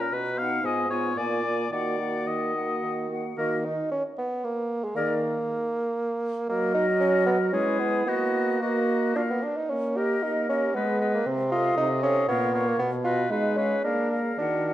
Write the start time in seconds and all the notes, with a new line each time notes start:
Already playing: C#4 F4 A#5
0.01 A#4
0.13 B2 B4
0.38 B3 D#4 F5 F#5
0.63 G#2 B3 F4 D#5 G#5
0.90 B3 F4 C#5 G#5
1.16 A#2 A#3 F4 D5 G#5
1.43 A#3 F4 G#5
1.71 D#3 A#3 F#4 D5 F#5
1.99 A#3 F#4 F#5
2.27 D#3 D#5
2.55 A#3 F#4 F#5
2.83 D#3
3.10 A#3 F#4 F#5
3.37 D#3 A#3 F#4 A#4 D#5
3.65 D#4
3.92 C#4
4.18 B3
4.44 A#3
4.84 G#3
4.96 D#3 A#3 G#4 A#4 D5
6.48 F#3 A#3 F#4 A#4 D#5
6.74 D#4
7.00 C#4
7.27 B3
7.53 G#3 C#4 E4 G#4 B4
7.79 B3
8.06 A#3 B3 F#4 D#5
8.61 A#3 F#4 D#5
9.16 A#3 D4 F4 A#4 F5
9.30 B3
9.43 D4
9.57 D#4
9.70 A#3 C#4
9.97 G4 A#4 D#5
10.23 A#3 D#4
10.49 C#4 G4 A#4 D#5
10.74 G#3 B3 G#4 B4 D#5
11.01 G#4 B4 D#5
11.14 A#3
11.26 C3 C4
11.52 F4 A4 D#5 F5
11.77 C3 D#4
12.03 C#4 A4 D#5 F5
12.28 A#2 B3 A#4 C#5 F5
12.53 A#4 C#5 F5
12.68 A#3
12.78 B2 B3
13.04 F4 F#4 B4 D#5
13.30 G#3 D#4 G#4 B4 F5
13.57 C#4 G#4 B4 F5
13.83 A#3 D4 G#4 A#4 F5
14.10 G#4 A#4 F5
14.38 D#3 D4 F#4 A#4 F#5
14.66 F#4 A#4 F#5